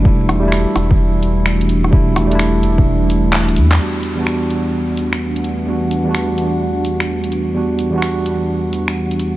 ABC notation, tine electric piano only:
X:1
M:4/4
L:1/16
Q:"Swing 16ths" 1/4=128
K:Em
V:1 name="Tine electric piano"
[G,A,DE]3 [G,A,DE]12- [G,A,DE] | [G,A,DE]3 [G,A,DE]12- [G,A,DE] | [E,,G,B,DF]3 [E,,G,B,DF]12- [E,,G,B,DF] | [E,,G,B,DF]3 [E,,G,B,DF]12- [E,,G,B,DF] |
[E,,G,B,DF]3 [E,,G,B,DF]12- [E,,G,B,DF] |]